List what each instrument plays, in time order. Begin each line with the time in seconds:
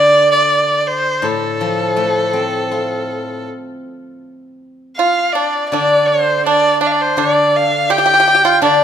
Already playing: guzheng D3, erhu D5
0.32 erhu D5
0.80 erhu D5
0.88 erhu C5
1.22 guzheng A2, erhu A4
1.61 guzheng F3
1.96 guzheng A3
2.33 guzheng C4
2.71 guzheng F4
4.97 pipa F4, erhu F5
5.33 pipa D4, erhu D5
5.70 guzheng D3, pipa D4, erhu D5
6.07 erhu C5
6.46 pipa D4, erhu D5
6.81 pipa D4, erhu D5
6.87 erhu F5
6.92 erhu D5
7.02 erhu C5
7.17 guzheng D3, pipa D4, erhu D5
7.56 erhu F5
7.90 pipa G4, erhu G5
7.98 pipa G4
8.06 pipa G4
8.14 pipa G4
8.20 pipa G4
8.28 pipa G4
8.35 pipa G4
8.45 pipa F4
8.62 guzheng D3, pipa D4, erhu D5